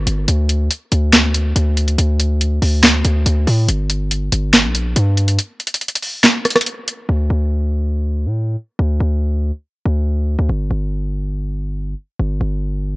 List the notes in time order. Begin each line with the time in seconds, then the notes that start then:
0.07 G1, closed hi-hat
0.28 D2, closed hi-hat
0.49 closed hi-hat
0.71 closed hi-hat
0.92 D2, closed hi-hat
1.13 snare, clap, closed hi-hat
1.34 closed hi-hat
1.56 D2, closed hi-hat
1.77 closed hi-hat
1.88 closed hi-hat
1.98 D2, closed hi-hat
2.19 closed hi-hat
2.41 closed hi-hat
2.62 D2, open hi-hat
2.83 snare, clap, closed hi-hat
3.05 D2, closed hi-hat
3.26 D2, closed hi-hat
3.47 A2, open hi-hat
3.68 G1, closed hi-hat
3.90 closed hi-hat
4.11 closed hi-hat
4.32 G1, closed hi-hat
4.54 snare, clap, closed hi-hat
4.64 A#1
4.75 closed hi-hat
4.96 G2, closed hi-hat
5.17 closed hi-hat
5.28 closed hi-hat
5.39 closed hi-hat
5.60 closed hi-hat
5.67 closed hi-hat
5.74 closed hi-hat
5.81 closed hi-hat
5.88 closed hi-hat
5.95 closed hi-hat
6.02 open hi-hat
6.24 snare, clap, closed hi-hat
6.45 cross-stick, closed hi-hat
6.50 closed hi-hat
6.56 cross-stick, closed hi-hat
6.61 closed hi-hat
6.66 closed hi-hat
6.88 closed hi-hat
7.09 D2
7.30 D2
8.26 A2
8.79 D2
9.00 D2
9.85 D2
10.39 D2
10.49 G1
10.71 G1
12.19 G1
12.41 G1